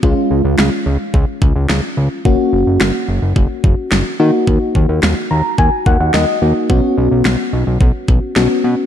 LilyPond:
<<
  \new Staff \with { instrumentName = "FM electric piano" } { \time 4/4 \key ees \minor \tempo 4 = 108 << { r1 | r1 | r4. bes''8 aes''8 ges''16 ges''16 ees''4 | r1 | } \\ { <aes des' f'>1 | <bes des' ges'>2.~ <bes des' ges'>8 <bes ees' ges'>8~ | <bes ees' ges'>2.~ <bes ees' ges'>8 <bes ees' ges'>8 | <b cis' fis'>2. <b cis' fis'>4 | } >> }
  \new Staff \with { instrumentName = "Analog synth bass" } { \clef bass \time 4/4 \key ees \minor des,16 r16 des,16 des,16 des,16 r16 des,16 r16 des,16 r16 des,16 des,16 des,16 r16 des,16 r16 | ges,,16 r16 ges,,16 ges,,16 ges,,16 r16 ges,,16 ges,,16 ges,,16 r16 ges,,16 r16 ges,,16 r16 ees16 r16 | ees,16 r16 ees,16 ees,16 ees,16 r16 ees,16 r16 ees,16 r16 ees,16 ees,16 ees,16 r16 ees,16 r16 | b,,16 r16 b,,16 b,,16 b,,16 r16 b,,16 b,,16 b,,16 r16 b,,16 r16 b,,16 r16 b,16 r16 | }
  \new DrumStaff \with { instrumentName = "Drums" } \drummode { \time 4/4 bd4 sn4 bd8 bd8 sn4 | bd4 sn4 bd8 bd8 sn4 | bd8 bd8 sn4 bd8 bd8 sn4 | bd4 sn4 bd8 bd8 sn4 | }
>>